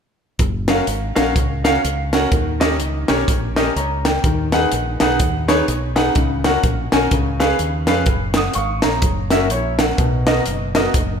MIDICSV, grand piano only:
0, 0, Header, 1, 2, 480
1, 0, Start_track
1, 0, Key_signature, 6, "major"
1, 0, Tempo, 479616
1, 394, Time_signature, 4, 2, 24, 8
1, 11209, End_track
2, 0, Start_track
2, 0, Title_t, "Grand piano"
2, 0, Program_c, 0, 0
2, 681, Note_on_c, 0, 77, 78
2, 682, Note_on_c, 0, 66, 62
2, 683, Note_on_c, 0, 70, 64
2, 684, Note_on_c, 0, 61, 75
2, 825, Note_off_c, 0, 77, 0
2, 826, Note_off_c, 0, 61, 0
2, 826, Note_off_c, 0, 66, 0
2, 826, Note_off_c, 0, 70, 0
2, 1156, Note_on_c, 0, 66, 71
2, 1156, Note_on_c, 0, 77, 84
2, 1159, Note_on_c, 0, 61, 77
2, 1160, Note_on_c, 0, 70, 68
2, 1303, Note_off_c, 0, 66, 0
2, 1303, Note_off_c, 0, 77, 0
2, 1305, Note_off_c, 0, 61, 0
2, 1305, Note_off_c, 0, 70, 0
2, 1643, Note_on_c, 0, 70, 64
2, 1644, Note_on_c, 0, 66, 64
2, 1645, Note_on_c, 0, 61, 82
2, 1645, Note_on_c, 0, 77, 90
2, 1787, Note_off_c, 0, 70, 0
2, 1788, Note_off_c, 0, 61, 0
2, 1788, Note_off_c, 0, 66, 0
2, 1788, Note_off_c, 0, 77, 0
2, 2131, Note_on_c, 0, 61, 82
2, 2132, Note_on_c, 0, 66, 68
2, 2133, Note_on_c, 0, 70, 66
2, 2134, Note_on_c, 0, 78, 80
2, 2272, Note_off_c, 0, 61, 0
2, 2272, Note_off_c, 0, 66, 0
2, 2272, Note_off_c, 0, 70, 0
2, 2273, Note_off_c, 0, 78, 0
2, 2315, Note_on_c, 0, 51, 59
2, 2601, Note_on_c, 0, 67, 66
2, 2602, Note_on_c, 0, 61, 77
2, 2602, Note_on_c, 0, 70, 68
2, 2606, Note_on_c, 0, 75, 88
2, 2747, Note_off_c, 0, 61, 0
2, 2747, Note_off_c, 0, 67, 0
2, 2748, Note_off_c, 0, 70, 0
2, 2749, Note_off_c, 0, 75, 0
2, 3044, Note_off_c, 0, 51, 0
2, 3086, Note_on_c, 0, 70, 71
2, 3088, Note_on_c, 0, 67, 73
2, 3090, Note_on_c, 0, 61, 78
2, 3090, Note_on_c, 0, 73, 83
2, 3230, Note_off_c, 0, 70, 0
2, 3231, Note_off_c, 0, 67, 0
2, 3232, Note_off_c, 0, 61, 0
2, 3232, Note_off_c, 0, 73, 0
2, 3566, Note_on_c, 0, 67, 77
2, 3568, Note_on_c, 0, 70, 70
2, 3568, Note_on_c, 0, 75, 93
2, 3570, Note_on_c, 0, 61, 77
2, 3710, Note_off_c, 0, 67, 0
2, 3711, Note_off_c, 0, 70, 0
2, 3711, Note_off_c, 0, 75, 0
2, 3712, Note_off_c, 0, 61, 0
2, 3769, Note_on_c, 0, 82, 57
2, 3774, Note_on_c, 0, 73, 52
2, 4037, Note_off_c, 0, 82, 0
2, 4040, Note_off_c, 0, 73, 0
2, 4058, Note_on_c, 0, 79, 59
2, 4069, Note_on_c, 0, 70, 48
2, 4248, Note_on_c, 0, 51, 65
2, 4509, Note_off_c, 0, 79, 0
2, 4515, Note_off_c, 0, 70, 0
2, 4531, Note_on_c, 0, 78, 86
2, 4533, Note_on_c, 0, 63, 78
2, 4535, Note_on_c, 0, 71, 65
2, 4536, Note_on_c, 0, 68, 68
2, 4672, Note_off_c, 0, 78, 0
2, 4673, Note_off_c, 0, 63, 0
2, 4675, Note_off_c, 0, 68, 0
2, 4675, Note_off_c, 0, 71, 0
2, 4971, Note_off_c, 0, 51, 0
2, 5008, Note_on_c, 0, 68, 73
2, 5011, Note_on_c, 0, 71, 72
2, 5012, Note_on_c, 0, 63, 77
2, 5013, Note_on_c, 0, 78, 84
2, 5151, Note_off_c, 0, 68, 0
2, 5153, Note_off_c, 0, 63, 0
2, 5153, Note_off_c, 0, 71, 0
2, 5153, Note_off_c, 0, 78, 0
2, 5483, Note_on_c, 0, 71, 72
2, 5488, Note_on_c, 0, 73, 89
2, 5489, Note_on_c, 0, 68, 67
2, 5490, Note_on_c, 0, 63, 74
2, 5629, Note_off_c, 0, 71, 0
2, 5631, Note_off_c, 0, 68, 0
2, 5631, Note_off_c, 0, 73, 0
2, 5632, Note_off_c, 0, 63, 0
2, 5960, Note_on_c, 0, 68, 67
2, 5962, Note_on_c, 0, 78, 85
2, 5963, Note_on_c, 0, 63, 80
2, 5963, Note_on_c, 0, 71, 68
2, 6107, Note_off_c, 0, 68, 0
2, 6108, Note_off_c, 0, 63, 0
2, 6108, Note_off_c, 0, 71, 0
2, 6108, Note_off_c, 0, 78, 0
2, 6166, Note_on_c, 0, 49, 62
2, 6448, Note_on_c, 0, 66, 69
2, 6448, Note_on_c, 0, 70, 64
2, 6450, Note_on_c, 0, 78, 81
2, 6452, Note_on_c, 0, 61, 70
2, 6590, Note_off_c, 0, 66, 0
2, 6590, Note_off_c, 0, 70, 0
2, 6592, Note_off_c, 0, 61, 0
2, 6592, Note_off_c, 0, 78, 0
2, 6889, Note_off_c, 0, 49, 0
2, 6932, Note_on_c, 0, 61, 77
2, 6932, Note_on_c, 0, 70, 76
2, 6934, Note_on_c, 0, 66, 62
2, 6934, Note_on_c, 0, 80, 80
2, 7072, Note_off_c, 0, 61, 0
2, 7072, Note_off_c, 0, 70, 0
2, 7073, Note_off_c, 0, 66, 0
2, 7073, Note_off_c, 0, 80, 0
2, 7116, Note_on_c, 0, 49, 68
2, 7402, Note_on_c, 0, 61, 77
2, 7402, Note_on_c, 0, 71, 76
2, 7403, Note_on_c, 0, 77, 81
2, 7404, Note_on_c, 0, 68, 77
2, 7547, Note_off_c, 0, 61, 0
2, 7547, Note_off_c, 0, 71, 0
2, 7547, Note_off_c, 0, 77, 0
2, 7548, Note_off_c, 0, 68, 0
2, 7843, Note_off_c, 0, 49, 0
2, 7880, Note_on_c, 0, 71, 75
2, 7880, Note_on_c, 0, 77, 82
2, 7881, Note_on_c, 0, 68, 66
2, 7884, Note_on_c, 0, 61, 67
2, 8025, Note_off_c, 0, 71, 0
2, 8025, Note_off_c, 0, 77, 0
2, 8026, Note_off_c, 0, 68, 0
2, 8028, Note_off_c, 0, 61, 0
2, 8374, Note_on_c, 0, 87, 56
2, 8376, Note_on_c, 0, 78, 46
2, 8553, Note_off_c, 0, 87, 0
2, 8554, Note_off_c, 0, 78, 0
2, 8558, Note_on_c, 0, 77, 52
2, 8559, Note_on_c, 0, 85, 62
2, 8829, Note_off_c, 0, 77, 0
2, 8829, Note_off_c, 0, 85, 0
2, 8841, Note_on_c, 0, 82, 63
2, 8848, Note_on_c, 0, 73, 50
2, 9297, Note_off_c, 0, 82, 0
2, 9300, Note_off_c, 0, 73, 0
2, 9316, Note_on_c, 0, 61, 69
2, 9316, Note_on_c, 0, 70, 67
2, 9318, Note_on_c, 0, 66, 65
2, 9319, Note_on_c, 0, 76, 79
2, 9462, Note_off_c, 0, 61, 0
2, 9462, Note_off_c, 0, 70, 0
2, 9463, Note_off_c, 0, 66, 0
2, 9463, Note_off_c, 0, 76, 0
2, 9520, Note_on_c, 0, 73, 67
2, 9521, Note_on_c, 0, 64, 58
2, 9789, Note_off_c, 0, 64, 0
2, 9789, Note_off_c, 0, 73, 0
2, 9801, Note_on_c, 0, 78, 60
2, 9808, Note_on_c, 0, 70, 51
2, 9985, Note_on_c, 0, 47, 58
2, 10256, Note_off_c, 0, 78, 0
2, 10259, Note_off_c, 0, 70, 0
2, 10273, Note_on_c, 0, 66, 68
2, 10276, Note_on_c, 0, 59, 70
2, 10278, Note_on_c, 0, 70, 66
2, 10280, Note_on_c, 0, 75, 85
2, 10419, Note_off_c, 0, 66, 0
2, 10421, Note_off_c, 0, 59, 0
2, 10421, Note_off_c, 0, 70, 0
2, 10423, Note_off_c, 0, 75, 0
2, 10713, Note_off_c, 0, 47, 0
2, 10759, Note_on_c, 0, 59, 70
2, 10761, Note_on_c, 0, 70, 71
2, 10763, Note_on_c, 0, 75, 87
2, 10766, Note_on_c, 0, 66, 71
2, 10901, Note_off_c, 0, 59, 0
2, 10902, Note_off_c, 0, 70, 0
2, 10903, Note_off_c, 0, 75, 0
2, 10904, Note_off_c, 0, 66, 0
2, 11209, End_track
0, 0, End_of_file